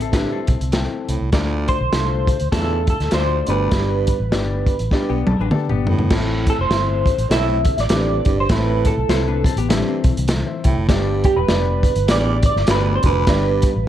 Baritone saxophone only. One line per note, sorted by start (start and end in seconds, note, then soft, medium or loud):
0.12 0.41 G2 medium
1.08 1.28 A2 medium
1.32 1.78 D2 medium
2.53 2.82 E2 medium
3.12 3.41 D2 medium
3.48 3.68 D2 medium
3.73 4.17 G2 medium
4.92 5.21 G2 medium
5.87 6.07 A2 medium
6.11 6.56 A2 medium
7.30 7.59 A2 medium
7.90 8.19 G2 medium
8.26 8.45 G2 medium
8.50 8.95 A2 medium
9.69 9.98 G2 medium
10.64 10.84 A2 medium
10.89 11.34 G2 medium
12.08 12.37 E2 medium
12.69 12.97 D2 medium
13.03 13.23 D2 medium
13.28 13.73 G2 medium